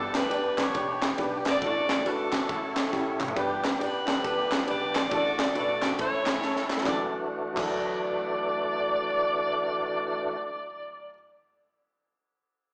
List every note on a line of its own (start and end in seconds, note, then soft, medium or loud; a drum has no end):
0.00 0.24 G1 loud
0.00 0.54 G2 medium
0.00 1.59 B3 medium
0.00 0.11 D4 medium
0.00 0.15 D4 medium
0.00 1.59 D4 medium
0.00 0.16 G4 medium
0.00 1.61 G4 medium
0.00 0.13 A4 medium
0.00 0.16 B4 medium
0.13 0.97 D4 medium
0.13 0.58 G4 medium
0.13 0.58 B4 loud
0.13 snare loud
0.13 clap medium
0.13 ride medium
0.29 0.68 D2 medium
0.29 0.59 D4 medium
0.29 0.59 G4 medium
0.29 0.60 D5 medium
0.29 ride medium
0.58 1.42 G4 medium
0.58 1.15 C#5 medium
0.58 kick loud
0.58 snare loud
0.58 clap medium
0.58 ride medium
0.74 1.12 B1 loud
0.74 1.03 D4 medium
0.74 1.03 G4 medium
0.74 1.04 B4 medium
0.74 kick loud
0.74 ride medium
1.02 snare loud
1.02 clap loud
1.02 ride medium
1.18 1.42 B1 loud
1.18 1.47 D4 medium
1.18 1.47 G4 medium
1.18 1.48 B4 loud
1.18 kick loud
1.18 ride medium
1.45 1.59 A#1 medium
1.45 1.62 D5 loud
1.45 snare loud
1.45 clap loud
1.45 ride medium
1.61 1.99 A1 loud
1.61 2.29 A2 medium
1.61 2.48 A3 medium
1.61 1.90 D4 medium
1.61 2.48 D4 medium
1.61 1.68 F4 medium
1.61 1.91 F#4 medium
1.61 2.06 F#4 medium
1.61 2.05 A4 medium
1.61 1.91 A4 medium
1.61 2.04 D5 loud
1.61 kick loud
1.61 ride medium
1.68 2.50 F#4 medium
1.89 snare loud
1.89 clap medium
1.89 ride medium
2.04 2.42 A2 medium
2.04 2.34 D4 medium
2.04 3.17 D4 medium
2.04 2.34 F#4 medium
2.04 3.17 F#4 medium
2.04 3.21 A4 medium
2.04 2.35 B4 medium
2.04 ride medium
2.32 kick loud
2.32 snare loud
2.32 clap medium
2.32 ride medium
2.48 2.86 A1 loud
2.48 3.16 A2 medium
2.48 3.36 A3 medium
2.48 2.77 C#4 medium
2.48 2.78 E4 medium
2.48 3.36 E4 medium
2.48 2.78 A4 medium
2.48 3.36 C#5 medium
2.48 kick loud
2.48 ride medium
2.76 snare loud
2.76 clap loud
2.76 ride medium
2.91 3.16 A1 loud
2.91 3.21 C#4 medium
2.91 3.21 E4 medium
2.91 3.22 G4 medium
2.91 kick medium
2.91 snare medium
3.20 3.34 G#1 loud
3.20 clap medium
3.20 mid tom medium
3.28 floor tom medium
3.36 3.74 G1 loud
3.36 4.04 G2 medium
3.36 4.21 B3 medium
3.36 5.09 B3 medium
3.36 3.65 D4 medium
3.36 3.79 D4 medium
3.36 5.09 D4 medium
3.36 3.65 G4 loud
3.36 5.09 G4 medium
3.36 3.79 G4 medium
3.36 3.66 B4 loud
3.36 kick loud
3.36 ride medium
3.64 snare loud
3.64 clap medium
3.64 ride medium
3.79 4.04 A1 medium
3.79 3.94 D4 medium
3.79 4.24 D4 medium
3.79 3.95 G4 medium
3.79 4.24 G4 medium
3.79 4.25 B4 medium
3.79 3.96 D5 medium
3.79 ride medium
4.05 4.22 F#1 medium
4.05 4.15 D4 medium
4.05 4.16 G4 medium
4.05 4.16 A4 medium
4.05 snare loud
4.05 clap medium
4.05 ride medium
4.22 4.61 G1 medium
4.22 4.52 D4 medium
4.22 5.08 D4 medium
4.22 4.52 G4 medium
4.22 4.68 G4 medium
4.22 4.53 A4 medium
4.22 4.66 B4 loud
4.22 kick loud
4.22 ride medium
4.52 snare loud
4.52 clap loud
4.52 ride medium
4.66 5.05 A#1 loud
4.66 4.96 D4 medium
4.66 4.96 G4 medium
4.66 5.09 G4 medium
4.66 4.96 B4 medium
4.66 5.09 B4 medium
4.66 5.12 D5 loud
4.66 ride medium
4.95 kick medium
4.95 snare loud
4.95 clap loud
4.95 ride medium
5.10 5.49 A1 loud
5.10 5.78 A2 medium
5.10 5.98 A3 medium
5.10 5.39 D4 loud
5.10 5.98 D4 medium
5.10 5.18 F4 medium
5.10 5.40 F#4 medium
5.10 5.56 F#4 medium
5.10 5.40 A4 loud
5.10 kick loud
5.10 ride medium
5.14 5.56 A4 medium
5.14 5.53 D5 loud
5.18 6.00 F#4 medium
5.39 snare loud
5.39 clap loud
5.39 ride medium
5.53 5.92 B1 medium
5.53 5.69 D4 medium
5.53 5.70 F#4 medium
5.53 5.97 A4 medium
5.53 5.70 B4 medium
5.53 5.97 D5 loud
5.53 ride medium
5.58 5.97 F#4 medium
5.82 5.91 D4 medium
5.82 5.91 F#4 medium
5.82 5.92 A4 medium
5.82 snare loud
5.82 clap medium
5.82 ride medium
5.98 6.36 A1 loud
5.98 6.65 A2 medium
5.98 6.84 A3 medium
5.98 6.27 C#4 medium
5.98 6.86 C#4 medium
5.98 6.27 E4 medium
5.98 6.82 E4 medium
5.98 6.85 E4 medium
5.98 6.27 A4 medium
5.98 6.82 A4 medium
5.98 6.66 C#5 loud
5.98 kick loud
5.98 ride medium
6.26 snare loud
6.26 clap loud
6.26 ride medium
6.41 6.80 D#2 medium
6.41 6.71 C#4 medium
6.41 6.71 E4 medium
6.41 6.71 A4 medium
6.41 snare medium
6.56 snare medium
6.70 snare medium
6.70 clap medium
6.78 6.99 F#3 medium
6.78 snare medium
6.84 7.01 D2 medium
6.84 7.02 D2 loud
6.84 10.37 E3 medium
6.84 10.37 A3 medium
6.84 7.00 D4 medium
6.84 10.37 D4 medium
6.84 7.02 E4 medium
6.84 10.37 F#4 medium
6.84 7.02 D5 medium
6.84 kick loud
6.84 snare medium
6.84 clap medium
6.89 7.03 A4 loud
7.54 11.09 D2 loud
7.54 11.09 D2 medium
7.54 11.05 F#3 medium
7.54 11.07 D4 medium
7.54 11.08 D5 loud
7.54 kick loud
7.54 clap medium
7.54 crash medium
7.59 11.10 E4 medium
7.59 11.12 A4 loud